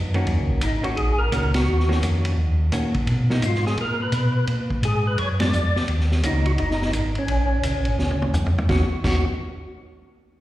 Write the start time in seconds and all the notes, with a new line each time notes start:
Already playing: F#2
0.14 D#3 A#3 C#4 F#4, ride
0.27 D#2, ride
0.39 C#2
0.50 A#1
0.61 G#1 D#4, hi-hat pedal, ride
0.83 D#3 A#3 C#4 F#4, ride
0.96 A#1 G#4, ride
1.18 A#4
1.32 C#2 D#3 A#3 C#4 F#4, hi-hat pedal, ride
1.54 F#4, snare, ride
1.67 D#2
1.80 snare
1.88 D#3 A#3 C#4 F#4, snare
2.01 F2, hi-hat pedal, ride
2.25 ride
2.37 D#2
2.72 A#2 D#3 A#3 C#4 F#4, hi-hat pedal, ride
2.94 kick, ride
3.07 B2, ride
3.30 F#3 A#3 D#4, snare
3.42 G#2 F4, hi-hat pedal, ride
3.55 snare
3.66 G#4, snare
3.77 A#2 A#4, ride
4.02 B4
4.12 B2, hi-hat pedal, ride
4.47 A#2, ride
4.70 kick
4.83 G#2 G#4, hi-hat pedal, ride
5.07 B4
5.18 F#2 C#5, ride
5.40 G#3 C#4 D4 D5, snare, ride
5.53 F2, hi-hat pedal
5.75 F2, snare
5.88 D#2, ride
6.00 snare
6.11 snare
6.23 C#2 D#3 A#3 C#4 D#4 F#4, hi-hat pedal, ride
6.46 F#4, ride
6.58 F#1 D#4, ride
6.71 snare
6.82 snare
6.93 G#1, hi-hat pedal, ride
7.15 C#4, ride
7.27 A#1, ride
7.63 C#2, hi-hat pedal, ride
7.75 A#1
7.85 G#1, ride
7.98 D2, snare
8.11 high tom
8.22 high tom
8.33 F2, floor tom, hi-hat pedal
8.46 floor tom
8.58 floor tom
8.69 D#2 D#3 A#3 C#4 F#4, kick, snare
9.04 D#2 D#3 A#3 C#4 F#4, kick, snare, crash